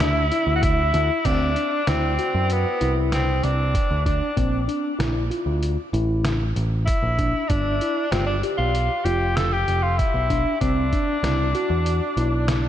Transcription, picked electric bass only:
0.00 0.30 D2 medium
0.47 0.91 D2 medium
0.94 1.09 D2 loud
1.25 1.55 D2 medium
1.88 2.17 D2 medium
2.34 2.64 F#2 medium
2.81 3.40 C2 medium
3.44 3.73 C2 medium
3.91 4.20 D2 medium
4.37 4.67 A#1 medium
5.00 5.29 A#1 medium
5.46 5.76 D2 medium
5.93 6.52 A1 medium
6.56 6.85 A1 medium
7.02 7.32 A#1 medium
7.50 7.79 G1 medium
8.12 8.41 G1 medium
8.58 8.88 B1 medium
9.05 9.64 F1 medium
9.68 9.97 F1 medium
10.14 10.44 B1 medium
10.61 10.91 C2 medium
11.23 11.53 C2 medium
11.70 11.99 E2 medium
12.17 12.69 B1 medium

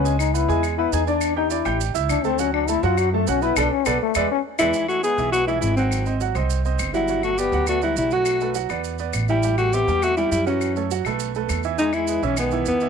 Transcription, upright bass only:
0.00 0.44 C#2 loud
0.49 0.90 E2 medium
0.92 1.60 E2 medium
1.65 1.93 A1 loud
1.95 2.09 C#2 medium
2.09 2.78 D2 medium
2.83 3.24 F#2 loud
3.27 3.55 B1 loud
3.56 3.67 B1 loud
3.86 3.97 B1 medium
4.15 4.26 E2 medium
4.60 4.70 E2 loud
5.18 5.59 B1 medium
5.62 6.30 G#1 medium
6.35 6.76 C2 loud
6.79 7.47 G1 medium
7.52 7.93 D2 medium
7.96 8.65 B1 medium
8.69 9.11 E2 medium
9.14 9.82 A1 medium
9.87 10.28 E2 medium
10.31 10.99 F#2 medium
11.05 11.46 B1 medium
11.49 12.17 E2 medium
12.22 12.63 B1 medium
12.66 12.89 E2 medium

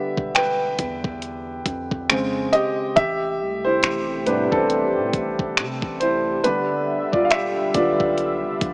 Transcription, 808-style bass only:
0.18 0.77 E1 medium
0.79 1.63 E2 loud
1.66 2.49 F2 loud
2.97 3.42 A1 loud
3.40 3.82 C2 loud
3.84 4.29 A1 loud
4.28 4.51 A2 loud
4.52 4.98 A1 loud
4.96 5.13 A2 medium
5.14 5.59 A1 loud
5.58 5.82 C3 medium
5.83 6.42 A1 loud
7.13 7.72 E1 medium
7.75 8.46 B1 loud
8.44 8.61 F1 medium
8.62 8.73 A#1 loud

